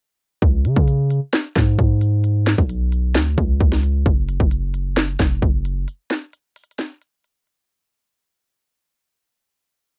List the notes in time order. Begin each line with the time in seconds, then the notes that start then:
0.42 C#2, kick, closed hi-hat
0.65 C#3, closed hi-hat
0.76 C#3, kick
0.88 closed hi-hat
1.10 closed hi-hat
1.33 snare, clap, closed hi-hat
1.56 G#2, kick, snare, clap, closed hi-hat
1.79 G#2, kick, closed hi-hat
2.01 closed hi-hat
2.24 closed hi-hat
2.47 snare, clap, closed hi-hat
2.58 B1, kick
2.69 closed hi-hat
2.92 closed hi-hat
3.15 D2, snare, clap, closed hi-hat
3.38 C#2, kick, closed hi-hat
3.60 C#2, kick, closed hi-hat
3.72 snare
3.83 closed hi-hat
4.06 F#1, kick, closed hi-hat
4.29 closed hi-hat
4.40 F#1, kick
4.51 closed hi-hat
4.74 closed hi-hat
4.97 snare, clap, closed hi-hat
5.20 F1, kick, snare, clap, closed hi-hat
5.42 F#1, kick, closed hi-hat
5.65 closed hi-hat
5.88 closed hi-hat
6.11 snare, clap, closed hi-hat
6.33 closed hi-hat
6.56 closed hi-hat, open hi-hat
6.64 closed hi-hat
6.71 closed hi-hat
6.79 snare, clap, closed hi-hat
7.02 closed hi-hat
7.24 closed hi-hat
7.47 closed hi-hat